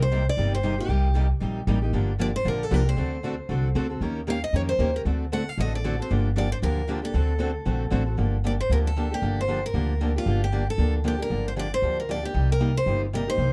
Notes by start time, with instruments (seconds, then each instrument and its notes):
Already playing: upright bass C2
0.02 steel-string acoustic guitar C5
0.11 steel-string acoustic guitar C3 G3 A#3 D#4 G4
0.29 steel-string acoustic guitar D5
0.37 upright bass G1, steel-string acoustic guitar C3 G3 A#3 D#4 G4
0.55 steel-string acoustic guitar C5
0.63 steel-string acoustic guitar C3 G3 A#3 D#4 G4
0.78 steel-string acoustic guitar A#3 D#4 G4
0.89 upright bass C2, steel-string acoustic guitar C3 G3 A#3 D#4 G4
1.15 steel-string acoustic guitar C3 G3 A#3 D#4 G4
1.41 upright bass A#1, steel-string acoustic guitar C3 G3 A#3 D#4 G4
1.67 upright bass A1, steel-string acoustic guitar C3 G3 A#3 D#4 G4
1.82 steel-string acoustic guitar A#3 D#4 G4
1.93 upright bass G1, steel-string acoustic guitar D3 F3 A#3 D4 G4
2.19 steel-string acoustic guitar D3 F3 A#3 D4 G4 D5
2.36 steel-string acoustic guitar C5
2.45 upright bass A#1, steel-string acoustic guitar D3 F3 A#3 D4 G4 A#4
2.63 steel-string acoustic guitar A4
2.70 upright bass C2, steel-string acoustic guitar D3 F3 A#3 D4 G4 A#4
2.85 steel-string acoustic guitar A#3 D4 G4 C5
2.96 upright bass D2, steel-string acoustic guitar D3 A3 C4 F#4 A4
3.23 steel-string acoustic guitar D3 A3 C4 F#4 A4
3.49 upright bass C2, steel-string acoustic guitar D3 A3 C4 F#4 A4
3.75 upright bass D2, steel-string acoustic guitar D3 A3 C4 F#4 A4
3.90 steel-string acoustic guitar C4 F#4 A4
4.01 upright bass D#2, steel-string acoustic guitar D#3 A#3 C#4 G4 A#4
4.27 steel-string acoustic guitar D#3 A#3 C#4 G4 A#4 F5
4.44 steel-string acoustic guitar D#5
4.53 upright bass F2, steel-string acoustic guitar D#3 A#3 C#4 G4 A#4 C#5
4.69 steel-string acoustic guitar C5
4.79 upright bass D#2, steel-string acoustic guitar D#3 A#3 C#4 G4 A#4
4.94 steel-string acoustic guitar C#4 G4 A#4
5.05 upright bass D2, steel-string acoustic guitar D3 A3 C4 F#4 A4
5.32 steel-string acoustic guitar D3 A3 C4 F#4 A4 F#5
5.49 steel-string acoustic guitar F5
5.58 upright bass A1, steel-string acoustic guitar D3 A3 C4 F#4 A4 D#5
5.75 steel-string acoustic guitar D5
5.84 steel-string acoustic guitar D3 A3 C4 F#4 A4
5.99 steel-string acoustic guitar C4 F#4 A4 C5
6.11 upright bass G1, steel-string acoustic guitar D3 F3 A#3 D4 G4
6.37 steel-string acoustic guitar D3 F3 A#3 D4 G4 D5
6.52 steel-string acoustic guitar C5
6.62 upright bass D2, steel-string acoustic guitar D3 F3 A#3 D4 G4 A#4
6.88 steel-string acoustic guitar D3 F3 A#3 D4 G4
7.02 steel-string acoustic guitar A#3 D4 G4 A4
7.13 upright bass D2, steel-string acoustic guitar D3 A3 C4 F#4 A4
7.38 steel-string acoustic guitar D3 A3 C4 F#4 A4
7.65 upright bass A#1, steel-string acoustic guitar D3 A3 C4 F#4 A4
7.90 upright bass A1, steel-string acoustic guitar D3 A3 C4 F#4 A4
8.06 steel-string acoustic guitar C4 F#4 A4
8.17 upright bass G1, steel-string acoustic guitar D3 F3 A#3 D4 G4
8.44 steel-string acoustic guitar D3 F3 A#3 D4 G4 D5
8.60 steel-string acoustic guitar C5
8.70 upright bass D2, steel-string acoustic guitar D3 F3 A#3 D4 G4 A#4
8.87 steel-string acoustic guitar A4
8.96 steel-string acoustic guitar D3 F3 A#3 D4 G4
9.11 steel-string acoustic guitar A#3 D4 G4
9.22 upright bass G1, steel-string acoustic guitar D3 F3 A#3 D4 G4
9.41 steel-string acoustic guitar C5
9.48 steel-string acoustic guitar D3 F3 A#3 D4 G4
9.66 steel-string acoustic guitar A#4
9.74 upright bass D2, steel-string acoustic guitar D3 F3 A#3 D4 G4
10.01 steel-string acoustic guitar D3 F3 A#3 D4 G4
10.16 steel-string acoustic guitar A#3 D4 F4 G4
10.26 upright bass G1, steel-string acoustic guitar D3 F3 A#3 D4 G4
10.44 steel-string acoustic guitar G4
10.52 steel-string acoustic guitar D3 F3 A#3 D4 G4
10.70 steel-string acoustic guitar A4
10.78 upright bass D2, steel-string acoustic guitar D3 F3 A#3 D4 G4
11.04 steel-string acoustic guitar D3 F3 A#3 D4 G4
11.19 steel-string acoustic guitar A#3 D4 G4 A#4
11.30 upright bass G1, steel-string acoustic guitar D3 F3 A#3 D4 G4
11.48 steel-string acoustic guitar C5
11.56 steel-string acoustic guitar D3 F3 A#3 D4 G4 D5
11.74 steel-string acoustic guitar C5
11.82 upright bass D2, steel-string acoustic guitar D3 F3 A#3 D4 G4
12.00 steel-string acoustic guitar A#4
12.09 steel-string acoustic guitar D3 F3 A#3 D4 G4 D5
12.23 steel-string acoustic guitar A#3 D4 G4
12.34 upright bass C2, steel-string acoustic guitar C3 G3 A#3 D#4 G4
12.52 steel-string acoustic guitar A#4
12.60 steel-string acoustic guitar C3 G3 A#3 D#4 G4
12.77 steel-string acoustic guitar C5
12.86 upright bass G1, steel-string acoustic guitar C3 G3 A#3 D#4 G4
13.13 steel-string acoustic guitar C3 G3 A#3 D#4 G4 A#4
13.27 steel-string acoustic guitar A#3 D#4 G4 C5
13.38 upright bass C2, steel-string acoustic guitar C3 G3 A#3 D#4 G4